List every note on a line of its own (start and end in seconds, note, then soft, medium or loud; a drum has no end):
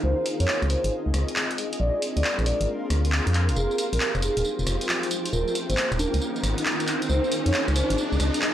0.00 0.14 C#2 medium
0.00 5.29 C4 medium
0.00 0.67 D#4 medium
0.00 1.57 D#4 medium
0.00 3.53 F4 medium
0.00 7.05 G#4 medium
0.00 0.67 A#4 medium
0.00 0.23 C5 loud
0.00 0.67 F5 medium
0.17 2.40 G#4 medium
0.26 1.58 D#5 medium
0.26 open hi-hat loud
0.40 0.46 F2 medium
0.40 0.55 C#5 medium
0.40 closed hi-hat medium
0.48 clap loud
0.62 0.76 C#2 loud
0.62 cross-stick medium
0.62 closed hi-hat soft
0.70 0.90 C5 medium
0.70 open hi-hat medium
0.84 0.90 G#1 medium
0.84 closed hi-hat medium
1.06 1.12 C#2 medium
1.14 1.24 C#2 medium
1.14 cross-stick medium
1.14 open hi-hat loud
1.28 closed hi-hat medium
1.36 clap loud
1.51 closed hi-hat soft
1.58 3.55 D4 medium
1.58 4.29 A#4 medium
1.58 open hi-hat medium
1.73 closed hi-hat medium
1.80 1.90 A#1 loud
1.80 2.00 D5 loud
1.89 4.29 F5 medium
1.97 4.29 C6 medium
2.02 open hi-hat loud
2.17 2.22 D2 medium
2.17 2.32 D5 medium
2.17 closed hi-hat medium
2.24 clap loud
2.39 2.53 A#1 medium
2.39 cross-stick medium
2.39 closed hi-hat soft
2.46 2.66 D5 medium
2.46 open hi-hat medium
2.61 2.66 G#1 medium
2.61 closed hi-hat medium
2.90 3.20 D2 medium
2.90 cross-stick medium
2.90 open hi-hat loud
3.05 closed hi-hat medium
3.12 clap loud
3.27 3.50 F2 medium
3.27 closed hi-hat medium
3.34 clap medium
3.34 open hi-hat medium
3.49 3.54 A#1 medium
3.49 closed hi-hat medium
3.56 3.67 F1 loud
3.56 5.31 D#4 medium
3.56 6.05 F4 medium
3.56 5.31 G4 medium
3.56 3.76 G#4 loud
3.56 tambourine soft
3.56 riser medium
3.71 tambourine soft
3.77 6.05 C5 medium
3.77 open hi-hat loud
3.77 tambourine medium
3.93 3.98 A#1 medium
3.93 4.08 A#4 medium
3.93 closed hi-hat medium
3.93 tambourine soft
4.00 clap loud
4.00 tambourine soft
4.13 4.29 F1 loud
4.13 6.05 G5 medium
4.13 cross-stick medium
4.13 closed hi-hat soft
4.13 tambourine soft
4.22 4.42 G#4 medium
4.22 open hi-hat medium
4.22 tambourine medium
4.37 4.43 D#1 medium
4.37 closed hi-hat medium
4.37 tambourine soft
4.45 tambourine soft
4.59 4.65 F1 medium
4.59 tambourine soft
4.67 4.77 F1 medium
4.67 cross-stick medium
4.67 open hi-hat loud
4.67 tambourine medium
4.81 closed hi-hat medium
4.81 tambourine soft
4.89 clap loud
4.89 tambourine soft
5.03 closed hi-hat medium
5.03 tambourine soft
5.11 open hi-hat medium
5.11 tambourine medium
5.26 closed hi-hat medium
5.26 tambourine soft
5.33 5.43 D#1 loud
5.33 7.08 A#3 medium
5.33 7.08 C#4 medium
5.33 7.73 D#4 medium
5.33 8.54 F4 medium
5.33 5.52 A#4 loud
5.33 tambourine soft
5.37 7.73 A#4 medium
5.48 tambourine soft
5.55 open hi-hat loud
5.55 tambourine medium
5.69 5.75 G#1 medium
5.69 5.84 C5 loud
5.69 closed hi-hat medium
5.69 tambourine soft
5.77 clap loud
5.77 tambourine soft
5.92 6.06 D#1 loud
5.92 7.73 F5 medium
5.92 cross-stick medium
5.92 closed hi-hat soft
5.92 tambourine soft
5.99 6.19 A#4 medium
5.99 open hi-hat medium
5.99 tambourine medium
5.99 high conga medium
6.14 6.19 C#2 medium
6.14 closed hi-hat medium
6.14 tambourine soft
6.21 tambourine soft
6.36 tambourine soft
6.43 6.54 G#1 loud
6.43 cross-stick medium
6.43 open hi-hat loud
6.43 tambourine medium
6.58 closed hi-hat medium
6.58 tambourine soft
6.66 clap loud
6.66 tambourine soft
6.80 closed hi-hat medium
6.80 tambourine soft
6.88 clap medium
6.88 open hi-hat medium
6.88 tambourine medium
7.02 closed hi-hat medium
7.02 tambourine soft
7.09 7.20 C#2 loud
7.09 8.54 C4 medium
7.09 8.54 D#4 medium
7.09 8.54 G#4 medium
7.09 7.29 C5 loud
7.09 tambourine soft
7.24 tambourine soft
7.30 8.54 D#5 medium
7.30 open hi-hat loud
7.30 tambourine medium
7.41 8.54 G#4 loud
7.46 7.51 F2 loud
7.46 7.61 C#5 loud
7.46 closed hi-hat medium
7.46 tambourine soft
7.54 clap loud
7.54 tambourine soft
7.68 7.82 C#2 loud
7.68 cross-stick medium
7.68 closed hi-hat soft
7.68 tambourine soft
7.75 7.95 C5 loud
7.75 open hi-hat loud
7.75 tambourine medium
7.90 7.96 G#1 medium
7.90 closed hi-hat medium
7.90 tambourine soft
7.98 tambourine soft
8.12 8.18 C#2 medium
8.12 tambourine soft
8.20 8.30 C#2 medium
8.20 cross-stick medium
8.20 open hi-hat loud
8.20 tambourine medium
8.34 closed hi-hat medium
8.34 tambourine soft
8.42 clap loud
8.42 tambourine soft